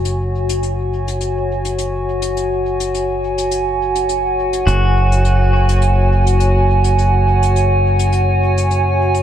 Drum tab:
HH |x--xx--xx--xx--x|x--xx--xx--xx--x|x--xx--xx--xx--x|x--xx--xx--xx--x|